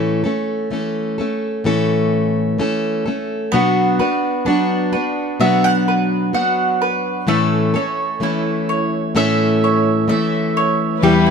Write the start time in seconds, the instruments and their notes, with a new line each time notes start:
Already playing: steel-string acoustic guitar A2 E3 A3 C#4 A4
0.24 steel-string acoustic guitar A3 C#4 A4
0.71 steel-string acoustic guitar E3 A3 C#4 A4
1.18 steel-string acoustic guitar A3 C#4 A4
1.64 steel-string acoustic guitar A2 E3 A3 C#4 A4
2.58 steel-string acoustic guitar E3 A3 C#4 A4
3.06 steel-string acoustic guitar A3 C#4 A4
3.52 steel-string acoustic guitar B2 F#3 B3 D4 F#4, mandolin B3
3.99 steel-string acoustic guitar B3 D4 F#4, mandolin B4
4.45 steel-string acoustic guitar F#3 B3 D4 F#4, mandolin D4
4.92 steel-string acoustic guitar B3 D4 F#4, mandolin B4
5.40 steel-string acoustic guitar B2 F#3 B3 D4 F#4, mandolin E5
5.64 mandolin F#5
5.88 mandolin B4
6.33 steel-string acoustic guitar F#3 B3 D4 F#4, mandolin F#5
6.82 mandolin B4
7.27 steel-string acoustic guitar A2 E3 A3 C#4 A4, mandolin A3
7.74 steel-string acoustic guitar A3 C#4 A4, mandolin C#5
8.20 steel-string acoustic guitar E3 A3 C#4 A4, mandolin E4
8.69 mandolin C#5
9.15 steel-string acoustic guitar A2 E3 A3 C#4 A4, mandolin E5
9.64 mandolin C#5
10.08 steel-string acoustic guitar E3 A3 C#4 A4, mandolin E5
10.57 mandolin C#5
11.00 steel-string acoustic guitar E2 B2 E3 G3 E4 G4, string section G3 E4 B4, mandolin G3
11.26 mandolin E4